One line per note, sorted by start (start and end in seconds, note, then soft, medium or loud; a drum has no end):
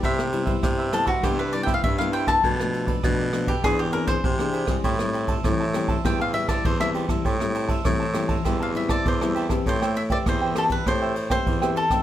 0.00 0.55 C3 loud
0.00 0.61 C3 medium
0.00 0.29 G3 medium
0.00 0.29 B3 medium
0.00 0.29 E4 medium
0.00 0.17 E4 medium
0.00 0.18 C5 medium
0.00 kick medium
0.00 ride soft
0.05 0.18 B4 medium
0.05 0.22 E5 medium
0.05 0.18 E5 medium
0.19 muted cavaquinho stroke soft
0.19 cross-stick medium
0.33 0.44 G3 medium
0.33 0.44 B3 medium
0.33 0.47 E4 soft
0.33 0.44 E4 medium
0.33 0.46 B4 medium
0.33 0.47 C5 medium
0.33 0.44 E5 medium
0.33 ride soft
0.46 0.88 G3 medium
0.46 0.88 B3 medium
0.46 0.89 E4 medium
0.46 0.77 B4 medium
0.46 0.77 C5 medium
0.46 0.76 E5 medium
0.46 kick medium
0.46 ride medium
0.63 1.21 G2 medium
0.63 1.15 C3 loud
0.63 kick medium
0.63 cross-stick medium
0.63 ride medium
0.78 0.92 B4 soft
0.78 0.92 C5 soft
0.78 0.92 E5 medium
0.92 1.12 G3 medium
0.92 1.12 B3 medium
0.92 1.07 E4 soft
0.92 1.12 E4 medium
0.92 1.08 A4 medium
0.92 1.05 B4 soft
0.92 1.06 C5 medium
0.92 1.04 E5 soft
0.92 cross-stick medium
0.92 ride medium
1.05 1.23 F#4 medium
1.05 1.21 B4 medium
1.05 1.22 C5 medium
1.05 1.21 E5 medium
1.05 kick medium
1.05 ride soft
1.22 1.75 G2 medium
1.22 1.81 C3 medium
1.22 1.42 G3 medium
1.22 1.42 B3 medium
1.22 1.37 E4 medium
1.22 1.42 E4 medium
1.22 1.38 G4 medium
1.22 1.38 B4 medium
1.22 1.37 C5 medium
1.22 1.37 E5 medium
1.22 kick medium
1.22 cross-stick medium
1.22 ride medium
1.38 1.54 B4 medium
1.38 1.52 B4 soft
1.38 1.52 C5 soft
1.38 1.52 E5 soft
1.52 1.82 G3 medium
1.52 1.82 B3 medium
1.52 1.83 E4 medium
1.52 1.63 D5 medium
1.52 muted cavaquinho stroke soft
1.52 ride medium
1.63 1.97 B4 medium
1.63 1.96 E5 medium
1.63 1.73 G5 medium
1.63 kick medium
1.67 1.97 C5 medium
1.67 cross-stick medium
1.67 ride soft
1.74 1.83 F5 medium
1.84 2.35 G2 medium
1.84 2.41 G2 medium
1.84 1.98 E5 medium
1.84 kick medium
1.84 ride medium
1.98 2.39 G3 medium
1.98 2.40 B3 medium
1.98 2.40 E4 medium
1.98 2.13 B4 soft
1.98 2.12 C5 soft
1.98 2.13 E5 medium
1.98 2.13 F5 medium
1.98 cross-stick medium
2.12 2.27 E4 medium
2.12 2.26 B4 medium
2.12 2.27 C5 medium
2.12 2.25 E5 medium
2.12 2.27 G5 medium
2.12 ride soft
2.27 2.42 B4 soft
2.27 2.43 C5 soft
2.27 2.42 E5 medium
2.27 3.15 A5 medium
2.27 kick medium
2.27 cross-stick medium
2.27 ride soft
2.42 2.95 B2 loud
2.42 3.02 B2 medium
2.42 2.53 F3 medium
2.42 2.54 A3 medium
2.42 2.54 D4 medium
2.42 2.57 F4 medium
2.42 2.58 A4 medium
2.42 2.58 B4 medium
2.42 2.58 D5 medium
2.42 kick medium
2.42 ride soft
2.59 3.00 F3 medium
2.59 3.00 A3 medium
2.59 3.00 D4 medium
2.59 muted cavaquinho stroke soft
2.59 cross-stick medium
2.72 2.87 F4 medium
2.72 2.87 A4 medium
2.72 2.87 B4 medium
2.72 2.85 D5 medium
2.72 ride soft
2.87 3.18 A4 medium
2.87 3.17 B4 medium
2.87 3.17 D5 medium
2.87 kick medium
2.87 ride soft
3.03 3.55 B2 loud
3.03 3.62 B2 medium
3.03 3.30 F3 medium
3.03 3.30 A3 medium
3.03 3.30 D4 medium
3.03 kick medium
3.03 cross-stick medium
3.03 ride medium
3.19 3.33 A4 soft
3.19 3.34 B4 soft
3.19 3.33 D5 medium
3.33 3.52 F3 medium
3.33 3.52 A3 medium
3.33 3.52 D4 medium
3.33 3.47 F4 soft
3.33 3.48 A4 soft
3.33 3.48 B4 soft
3.33 3.46 D5 medium
3.33 cross-stick medium
3.33 ride soft
3.47 3.63 G4 medium
3.47 3.63 A4 medium
3.47 3.63 B4 medium
3.47 3.62 D5 medium
3.47 kick medium
3.47 ride soft
3.64 4.15 E2 medium
3.64 4.22 E3 medium
3.64 3.82 C4 medium
3.64 3.82 D4 medium
3.64 3.78 E4 medium
3.64 3.79 G#4 medium
3.64 3.78 G#4 medium
3.64 3.82 G#4 medium
3.64 3.79 C5 medium
3.64 3.79 D5 medium
3.64 kick medium
3.64 cross-stick medium
3.64 ride medium
3.79 3.92 G4 medium
3.79 3.94 G#4 soft
3.79 3.94 C5 soft
3.79 3.93 D5 soft
3.93 4.22 C4 medium
3.93 4.23 D4 medium
3.93 4.23 G#4 medium
3.93 4.07 A#4 loud
3.93 muted cavaquinho stroke soft
3.93 ride soft
4.07 4.39 G#4 medium
4.07 5.55 C5 medium
4.07 4.38 C5 medium
4.07 4.37 D5 medium
4.07 kick medium
4.07 cross-stick medium
4.07 ride soft
4.24 4.76 C3 loud
4.24 4.68 E3 medium
4.24 kick medium
4.24 ride soft
4.39 4.65 C4 medium
4.39 4.65 D4 medium
4.39 4.66 G#4 medium
4.39 4.53 G#4 soft
4.39 4.53 C5 soft
4.39 4.53 D5 soft
4.39 cross-stick medium
4.53 4.68 E4 medium
4.53 4.68 G#4 medium
4.53 4.67 C5 medium
4.53 4.66 D5 medium
4.53 ride medium
4.67 4.94 G3 medium
4.67 4.94 C4 medium
4.67 4.95 E4 medium
4.67 4.83 G#4 soft
4.67 4.83 C5 soft
4.67 4.82 D5 medium
4.67 kick medium
4.67 cross-stick medium
4.67 ride medium
4.84 5.36 A2 loud
4.84 5.42 A2 medium
4.84 4.98 G4 medium
4.84 4.98 C5 medium
4.84 4.99 E5 medium
4.84 4.99 A5 medium
4.84 kick medium
4.84 ride medium
4.99 5.41 G3 medium
4.99 5.41 C4 medium
4.99 5.41 E4 medium
4.99 muted cavaquinho stroke soft
4.99 cross-stick medium
5.14 5.28 G4 soft
5.14 5.28 C5 medium
5.14 5.28 E5 medium
5.14 5.27 A5 medium
5.14 ride medium
5.28 5.59 C5 medium
5.28 5.58 E5 medium
5.28 5.58 A5 medium
5.28 kick medium
5.28 ride medium
5.44 5.96 A2 loud
5.44 6.02 E3 medium
5.44 5.63 G3 medium
5.44 5.63 C4 medium
5.44 5.63 E4 medium
5.44 kick medium
5.44 cross-stick medium
5.44 ride medium
5.60 5.74 C5 soft
5.60 5.74 E5 medium
5.60 5.74 A5 medium
5.74 6.00 G3 medium
5.74 6.00 C4 medium
5.74 6.00 E4 medium
5.74 5.88 G4 soft
5.74 5.89 C5 medium
5.74 5.89 E5 medium
5.74 5.87 A5 medium
5.74 cross-stick medium
5.74 ride medium
5.88 6.04 C5 medium
5.88 6.04 E5 medium
5.88 6.03 A5 medium
5.88 kick medium
5.88 ride medium
6.04 6.56 E2 medium
6.04 6.62 A2 medium
6.04 6.22 G3 medium
6.04 6.22 C4 medium
6.04 6.23 E4 medium
6.04 6.19 G4 medium
6.04 6.19 C5 medium
6.04 6.19 E5 medium
6.04 6.20 G5 medium
6.04 6.19 A5 medium
6.04 kick medium
6.04 cross-stick medium
6.04 ride medium
6.20 6.34 C5 soft
6.20 6.34 E5 soft
6.20 6.33 F5 medium
6.20 6.34 A5 soft
6.34 6.75 G3 medium
6.34 6.75 C4 medium
6.34 6.75 E4 medium
6.34 6.48 E5 medium
6.34 muted cavaquinho stroke soft
6.34 ride medium
6.48 6.79 C5 medium
6.48 6.64 D5 medium
6.48 6.79 E5 medium
6.48 6.78 A5 medium
6.48 kick medium
6.48 cross-stick medium
6.48 ride medium
6.64 7.10 E2 medium
6.64 7.22 E3 medium
6.64 6.80 C5 medium
6.64 kick medium
6.64 ride soft
6.80 7.05 G3 medium
6.80 7.06 C4 medium
6.80 7.06 E4 medium
6.80 6.94 C5 soft
6.80 6.89 E5 medium
6.80 6.94 E5 soft
6.80 6.94 A5 soft
6.80 cross-stick medium
6.94 7.08 G4 medium
6.94 7.09 C5 medium
6.94 7.09 E5 medium
6.94 7.08 A5 medium
6.94 ride soft
7.09 7.35 G3 medium
7.09 7.35 C4 medium
7.09 7.35 E4 medium
7.09 7.24 C5 soft
7.09 7.24 E5 soft
7.09 7.23 A5 soft
7.09 kick medium
7.09 cross-stick medium
7.09 ride soft
7.25 7.82 A2 medium
7.25 7.76 A2 loud
7.25 7.39 G4 medium
7.25 7.39 C5 medium
7.25 7.40 E5 medium
7.25 7.40 A5 medium
7.25 kick medium
7.25 ride medium
7.40 7.81 G3 medium
7.40 7.81 C4 medium
7.40 7.82 E4 medium
7.40 muted cavaquinho stroke soft
7.40 cross-stick medium
7.54 7.68 G4 medium
7.54 7.69 C5 medium
7.54 7.69 E5 medium
7.54 7.67 A5 medium
7.54 ride medium
7.69 7.99 C5 medium
7.69 7.99 E5 medium
7.69 7.98 A5 medium
7.69 kick medium
7.69 ride soft
7.85 8.36 A2 loud
7.85 8.42 E3 medium
7.85 8.03 G3 medium
7.85 8.03 C4 medium
7.85 8.03 E4 medium
7.85 kick medium
7.85 cross-stick medium
7.85 ride soft
8.00 8.14 C5 soft
8.00 8.15 E5 soft
8.00 8.14 A5 soft
8.14 8.40 G3 medium
8.14 8.41 C4 medium
8.14 8.41 E4 medium
8.14 8.29 G4 medium
8.14 8.29 C5 soft
8.14 8.29 E5 medium
8.14 8.27 A5 soft
8.14 cross-stick medium
8.14 ride medium
8.29 8.44 C5 medium
8.29 8.44 E5 medium
8.29 8.43 A5 medium
8.29 kick medium
8.29 ride soft
8.45 8.97 E2 loud
8.45 9.03 A2 medium
8.45 8.71 G3 medium
8.45 8.71 C4 medium
8.45 8.71 E4 medium
8.45 8.59 G4 medium
8.45 8.59 C5 medium
8.45 8.60 E5 medium
8.45 8.59 A5 medium
8.45 kick medium
8.45 cross-stick medium
8.45 ride medium
8.60 8.74 C5 soft
8.60 8.75 E5 soft
8.60 8.76 F5 medium
8.60 8.74 A5 medium
8.75 9.03 G3 medium
8.75 9.04 C4 medium
8.75 9.04 E4 medium
8.75 8.90 E5 medium
8.75 muted cavaquinho stroke soft
8.75 ride soft
8.89 9.20 C5 medium
8.89 9.05 D5 medium
8.89 9.20 E5 medium
8.89 9.19 A5 medium
8.89 kick medium
8.89 cross-stick medium
8.89 ride soft
9.06 9.57 E2 loud
9.06 9.63 E3 medium
9.06 9.49 C5 medium
9.06 kick medium
9.06 ride soft
9.21 9.47 G3 medium
9.21 9.47 C4 medium
9.21 9.47 E4 medium
9.21 9.35 C5 soft
9.21 9.35 E5 soft
9.21 9.35 A5 medium
9.21 cross-stick medium
9.35 9.49 G4 medium
9.35 9.50 C5 medium
9.35 9.50 E5 medium
9.35 9.49 A5 medium
9.35 ride soft
9.50 9.76 C4 medium
9.50 9.76 G4 medium
9.50 9.76 B4 medium
9.50 9.65 C5 soft
9.50 9.65 E5 soft
9.50 9.64 A5 medium
9.50 kick medium
9.50 cross-stick medium
9.50 ride soft
9.66 10.17 A2 loud
9.66 10.24 A3 medium
9.66 9.80 A4 medium
9.66 9.80 C5 soft
9.66 9.95 C5 loud
9.66 9.81 E5 soft
9.66 9.80 G5 medium
9.66 kick medium
9.66 ride soft
9.82 9.95 C5 medium
9.82 9.96 E5 medium
9.82 9.95 G5 medium
9.82 cross-stick medium
9.96 10.02 E5 medium
9.96 muted cavaquinho stroke soft
9.96 ride soft
10.10 10.51 C4 medium
10.10 10.52 G4 medium
10.10 10.52 B4 medium
10.10 10.25 C5 soft
10.10 10.17 D5 medium
10.10 10.25 E5 medium
10.10 10.24 G5 medium
10.10 kick medium
10.10 ride soft
10.26 10.77 E2 medium
10.26 10.84 E3 medium
10.26 10.40 A4 soft
10.26 10.40 C5 soft
10.26 10.58 C5 medium
10.26 10.41 E5 medium
10.26 10.40 G5 medium
10.26 kick medium
10.26 cross-stick medium
10.26 ride medium
10.41 10.55 C5 medium
10.41 10.56 E5 medium
10.41 10.55 G5 medium
10.55 10.81 C4 medium
10.55 10.81 G4 medium
10.55 10.85 A4 medium
10.55 10.63 A4 medium
10.55 10.81 B4 medium
10.55 10.85 C5 medium
10.55 10.85 E5 medium
10.55 10.86 G5 medium
10.55 cross-stick medium
10.55 ride medium
10.70 10.87 B4 medium
10.70 kick medium
10.70 ride soft
10.86 11.38 A2 medium
10.86 11.44 A3 medium
10.86 11.15 C4 medium
10.86 11.15 G4 medium
10.86 11.00 A4 soft
10.86 11.15 B4 medium
10.86 11.01 C5 soft
10.86 11.30 C5 loud
10.86 11.01 E5 soft
10.86 11.00 G5 medium
10.86 kick medium
10.86 cross-stick medium
10.86 ride soft
11.01 11.15 C5 medium
11.01 11.15 E5 medium
11.01 11.15 G5 medium
11.15 muted cavaquinho stroke soft
11.15 ride medium
11.30 11.57 C4 medium
11.30 11.57 G4 medium
11.30 11.57 B4 medium
11.30 11.73 C5 medium
11.30 11.61 C5 medium
11.30 11.60 E5 medium
11.30 11.60 G5 medium
11.30 kick medium
11.30 cross-stick medium
11.30 ride soft
11.47 11.85 E2 medium
11.47 12.03 E3 medium
11.47 kick medium
11.47 ride soft
11.62 11.87 C4 medium
11.62 11.87 G4 medium
11.62 11.87 B4 medium
11.62 11.75 C5 medium
11.62 11.76 E5 medium
11.62 11.75 G5 medium
11.62 cross-stick medium
11.76 11.90 A4 soft
11.76 12.03 A4 medium
11.76 11.90 C5 medium
11.76 11.91 E5 medium
11.76 11.90 G5 medium
11.76 ride soft
11.90 12.03 A3 medium
11.90 12.03 C4 medium
11.90 12.03 D#4 medium
11.90 12.03 C5 medium
11.90 12.03 E5 medium
11.90 12.03 G5 medium
11.90 kick medium
11.90 cross-stick medium
11.90 ride soft